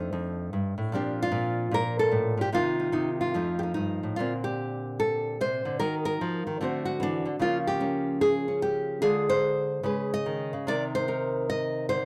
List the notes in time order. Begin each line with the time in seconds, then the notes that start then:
Already playing: F2 A3 D4 C5
0.00 D#4
0.13 F2
0.53 G2
0.78 A2
0.92 A#2 F3 C4 D4 G4
1.22 F4
1.32 A#2
1.71 A#2 A#4
1.99 A4
2.11 A2
2.37 A#2 G4
2.52 C3 D#3 A#3 D#4 F4
2.80 D#4
2.92 C3 D#4
3.21 F4
3.34 F2 F3 A3 D#4
3.59 G4
3.63 D#4
3.74 G2 D#4
4.03 A2
4.16 A#2 D3 F4
4.20 C4
4.44 G4
5.00 A4
5.41 C3 C5
5.65 D3
5.80 D#3 D#4 F#4 A#4
6.05 A#4
6.21 F3
6.47 D#3
6.61 D3 A3 C4 F#4 C5
6.85 F#4
7.00 E3 D4
7.26 D3
7.39 C#3 F3 A#3 C#4 F4
7.67 G4
7.80 A#3 C#4
8.21 G#4
8.48 C#4
8.62 G4
9.02 D3 G#3 F4 G#4
9.29 C5
9.83 C#3 G#3 G#4 B4
10.14 D#5
10.26 D#3
10.53 C#3
10.67 C3 D#3 D#4 A#4 D5
10.95 C5
11.08 D#4 A#4
11.50 D#5
11.89 D3 C5